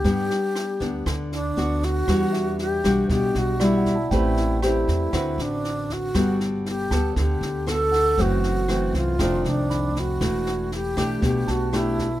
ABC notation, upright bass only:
X:1
M:4/4
L:1/8
Q:1/4=118
K:G
V:1 name="Upright bass" clef=bass
G,, z2 D,, D,,2 D,,2 | [K:Em] E,,3 B,,, B,,, B,,,3 | A,,,3 E,, D,, A,,,3 | G,,,3 D,, D,, D,,3 |
F,,,3 C,, =F,,, C,,3 | E,,,3 B,,, B,,, B,,,3 |]